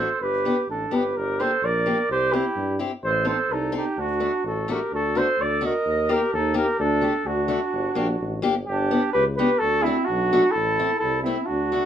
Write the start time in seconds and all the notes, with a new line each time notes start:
Already playing: A4 C5
0.21 G1 G4 B4
0.45 B3 D4 G4
0.68 A1 D4 A4
0.91 G1 B3 D4 G4 B4
1.16 G1 G4 A#4
1.40 A#3 D4 G4 A4 C5
1.62 A#1 A#4 D5
1.86 A#3 D4 G4
2.10 C2 G4 C5
2.33 C4 E4 G4
2.56 G2
2.79 C4 E4 G4
3.03 A1 A4 C5
3.25 C4 D#4 A4
3.29 C5
3.49 C2 D#4 A4
3.72 C4 D#4 A4
3.77 D#4 G4
3.97 D2 D4 F#4
4.20 A3 D4 F#4
4.44 A1 F#4 A4
4.68 A3 D4 F#4 G4 A#4
4.92 D2 F#4 A4
5.15 A3 D4 F#4 C5
5.19 A4
5.39 D2 D5
5.44 A4
5.61 A3 D4 F#4 D#5
5.66 A#4
5.86 D#2
6.09 A#3 D#4 G4 A#4
6.15 G4
6.33 D#2 D#4 A4
6.54 A#3 D#4 G4 A#4
6.61 G4
6.79 D2 A4
6.84 D4
7.01 A3 D4 G4
7.25 D2 D4 F#4
7.48 A3 D4 F#4
7.73 G1
7.95 A#1 A#3 D4 G4
8.21 A1
8.42 G1 A#3 D4 G4
8.67 G1 D4 G4
8.91 B3 D4 G4
9.13 C#2 G4 B4
9.36 B3 D4 G4 B4
9.59 D2 F#4 A4
9.82 C4 E4
9.86 A3 D4 F#4
10.05 D4 F#4
10.09 B1
10.33 A3 D4 F#4
10.50 E4 A4
10.55 A1
10.79 A3 C4 E4
10.99 C2 E4 A4
11.23 A3 C4 E4
11.27 E4
11.45 D4 F#4
11.50 D2
11.72 A3 D4 F#4